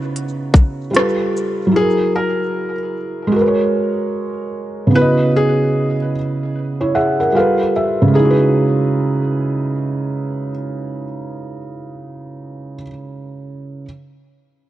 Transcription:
Already playing: C#3 B3 D#4 E4 F#4
0.16 closed hi-hat
0.54 kick, closed hi-hat, shaker
0.91 G3 F4, closed hi-hat
0.96 A4 B4, cross-stick
1.37 shaker
1.67 F#3
1.71 E4
1.76 G#4
1.81 A#4
2.16 A#4
3.27 G#3
3.32 F#4
3.36 A#4
3.41 B4
3.48 C#5
4.87 C#3 B3
4.94 E4 F#4 B4
5.01 D#5
5.36 G#4
6.81 E4 C#5
6.95 G#4 E5 F#5
7.20 A#4 F#5
7.32 G3 F4 F5
7.37 A4 B4
7.76 E5
8.02 C#3
8.08 G#3
8.14 D#4 G#4
8.19 E4
8.25 F#4
8.30 B4

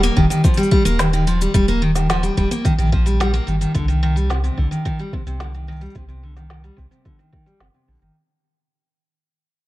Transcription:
0.03 A#3, open hi-hat, shaker
0.17 D#1 D#3, kick
0.30 D#3, open hi-hat, shaker
0.44 F3, kick, open hi-hat, shaker
0.54 G3, open hi-hat
0.58 shaker
0.63 open hi-hat
0.71 G3, kick
0.85 D#1 A#3, open hi-hat, shaker
0.99 D#3, snare, open hi-hat, shaker
1.13 D#3, shaker
1.27 F3, open hi-hat
1.41 G3, open hi-hat, shaker
1.54 D#1 G3, kick, open hi-hat, shaker
1.68 A#3, open hi-hat, shaker
1.82 D#3
1.95 D#3, snare, open hi-hat, shaker
2.10 F3, snare, shaker
2.23 G3, open hi-hat, shaker
2.37 D#1 G3, kick, open hi-hat
2.51 A#3, open hi-hat, shaker
2.65 D#3, kick, open hi-hat, shaker
2.78 A#1 D#3, shaker
2.92 F3, kick
3.06 G3, open hi-hat, shaker
3.20 G3, snare, open hi-hat, shaker
3.34 A#3, shaker
3.47 G1 D#3, open hi-hat
3.61 D#3, open hi-hat, shaker
3.75 C2 D3, kick, open hi-hat, shaker
3.88 D#3, open hi-hat, shaker
4.03 D#3
4.16 G3, open hi-hat, shaker
4.30 C3, snare, shaker
4.44 C3, open hi-hat, shaker
4.57 C2 D3, kick
4.71 D#3, open hi-hat, shaker
4.85 D#3, kick, open hi-hat, shaker
4.99 G3, shaker
5.13 C3, kick
5.26 C2 C3, open hi-hat, shaker
5.40 D3, snare, open hi-hat, shaker
5.54 D#3, shaker
5.67 D#3, open hi-hat
5.72 open hi-hat
5.77 open hi-hat
5.81 G3, open hi-hat, shaker
5.86 open hi-hat
5.90 open hi-hat
5.95 C2 C3, kick, open hi-hat, shaker
6.08 C3, open hi-hat, shaker
6.23 D3
6.36 D#3, snare, open hi-hat, shaker
6.50 D#3, snare, shaker
6.64 G3, open hi-hat, shaker
6.76 C2 C3, kick, open hi-hat
6.91 C3, open hi-hat, shaker
7.05 D3, kick, open hi-hat, shaker
7.19 D#3, shaker
7.32 D#3, kick
7.46 G3, open hi-hat, shaker
7.60 G1 C3, snare, open hi-hat
7.74 C3
7.88 A#1 D3, open hi-hat
7.90 open hi-hat
7.93 open hi-hat
7.95 open hi-hat
7.97 open hi-hat
7.99 G1 D#3, open hi-hat, shaker

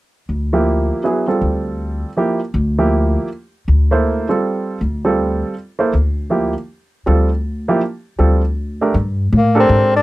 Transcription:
0.29 D2
0.53 F3 A#3 E4 G4
1.04 F#3 B3 E4 G#4
1.27 G3 C4 F4 A4
1.41 D2
2.17 F3 A#3 E4 G4
2.54 D2
2.78 F3 A#3 E4 G4
3.68 D2
3.91 A#3 E4 A4 C5
4.29 G3 C4 F4 A4
4.81 D2
5.05 G3 C4 F4 A4
5.79 A#3 E4 A4 C5
5.93 D2
6.30 F3 A#3 E4 G4
7.06 D2 G3 C4 F4 A4
7.68 F3 A#3 E4 G4
8.19 D2 G3 C4 F4 A4
8.81 A3 D4 G4 A#4
8.94 G2
9.33 A2
9.37 A#3
9.55 D4 G4 A4 A#4
9.60 C4
9.69 G#2
9.96 D4

